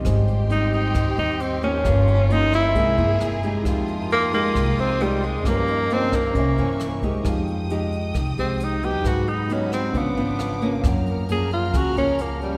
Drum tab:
HH |xxxxxxxx|xxxxxxxx|xxxxxxxx|xxxxxxxx|
SD |r---r---|r--r--r-|r---r---|r--r--r-|
BD |o---o---|o---o---|o---o---|o--oo--o|

HH |xxxxxxxx|xxxxxxxx|xxxxxxxx|
SD |r---r---|r--r--r-|r---r---|
BD |o---o---|o---o---|o---o---|